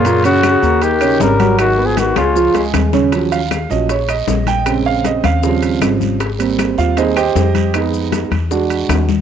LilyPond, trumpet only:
\new Staff \with { instrumentName = "Trumpet" } { \time 4/4 \key cis \mixolydian \tempo 4 = 156 f'8 fis'4. g'4 ais'4 | \tuplet 3/2 { fis'4 gis'8 } fis'8 eis'4. r4 | \key aes \dorian r1 | r1 |
r1 | r1 | }